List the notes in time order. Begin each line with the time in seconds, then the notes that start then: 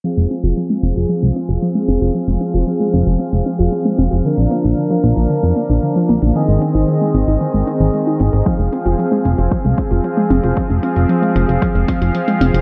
0.04 F3 C4 G#4 F5, closed hi-hat
0.17 F1 G#3, closed hi-hat
0.30 C4, closed hi-hat
0.44 F1 F4, closed hi-hat
0.57 F3, closed hi-hat
0.70 G#3, closed hi-hat
0.83 F1 C4, closed hi-hat
0.96 F1 F4, closed hi-hat
1.09 F3, closed hi-hat
1.22 C2 G#3, closed hi-hat
1.36 C4, closed hi-hat
1.49 F1 F4, closed hi-hat
1.62 F3, closed hi-hat
1.75 G#3, closed hi-hat
1.88 F1 C4, closed hi-hat
2.01 F1 F4, closed hi-hat
2.15 F3, closed hi-hat
2.28 F1 G#3, closed hi-hat
2.41 C4, closed hi-hat
2.54 F1 F4, closed hi-hat
2.67 F3, closed hi-hat
2.80 G#3, closed hi-hat
2.93 F1 C4, closed hi-hat
3.07 F1 F4, closed hi-hat
3.20 F3, closed hi-hat
3.33 F1 G#3, closed hi-hat
3.46 C4, closed hi-hat
3.59 F1 F4, closed hi-hat
3.72 F3, closed hi-hat
3.85 G#3, closed hi-hat
3.98 F1 C4, closed hi-hat
4.11 F1 F4, closed hi-hat
4.25 D3 D4 A#4, closed hi-hat
4.38 A#1 F3, closed hi-hat
4.51 A#3, closed hi-hat
4.64 A#1 D4, closed hi-hat
4.77 D3, closed hi-hat
4.90 F3, closed hi-hat
5.03 A#1 A#3, closed hi-hat
5.17 A#1 D4, closed hi-hat
5.30 D3, closed hi-hat
5.43 F2 F3, closed hi-hat
5.56 A#3, closed hi-hat
5.70 A#1 D4, closed hi-hat
5.83 D3, closed hi-hat
5.96 F3, closed hi-hat
6.09 A#1 A#3, closed hi-hat
6.22 A#1 D4, closed hi-hat
6.35 D#3 C4 G#4 D#5, closed hi-hat
6.48 G#1 G#3, closed hi-hat
6.62 C4, closed hi-hat
6.75 G#1 D#4, closed hi-hat
6.88 D#3, closed hi-hat
7.01 G#3, closed hi-hat
7.14 G#1 C4, closed hi-hat
7.28 G#1 D#4, closed hi-hat
7.41 D#3, closed hi-hat
7.54 G#1 G#3, closed hi-hat
7.67 C4, closed hi-hat
7.80 G#1 D#3, closed hi-hat
7.94 G#3, closed hi-hat
8.07 D#4, closed hi-hat
8.20 G#1 C4, closed hi-hat
8.33 G#1 G#4, closed hi-hat
8.46 F3 C4 F5, kick, closed hi-hat
8.59 F1 G#3, closed hi-hat
8.72 C4, closed hi-hat
8.86 F1 F4, closed hi-hat
8.99 F3, closed hi-hat
9.12 G#3, closed hi-hat
9.25 F1 C4, closed hi-hat
9.38 F1 F4, closed hi-hat
9.51 F3, kick, closed hi-hat
9.65 C2 G#3, closed hi-hat
9.78 C4, kick, closed hi-hat
9.91 F1 F4, closed hi-hat
10.04 F3, closed hi-hat
10.17 G#3, closed hi-hat
10.30 F1 C4, closed hi-hat
10.44 F1 F4, closed hi-hat
10.57 F3, kick, closed hi-hat
10.70 F1 G#3, closed hi-hat
10.83 C4, closed hi-hat
10.96 F1 F4, closed hi-hat
11.09 F3, closed hi-hat
11.22 G#3, closed hi-hat
11.35 F1 C4, closed hi-hat
11.49 F1 F4, closed hi-hat
11.62 F3, kick, closed hi-hat
11.75 F1 G#3, closed hi-hat
11.88 C4, kick, closed hi-hat
12.01 F1 F4, closed hi-hat
12.15 F3, closed hi-hat
12.28 G#3, closed hi-hat
12.41 F1 C4, closed hi-hat
12.54 F1 F4, closed hi-hat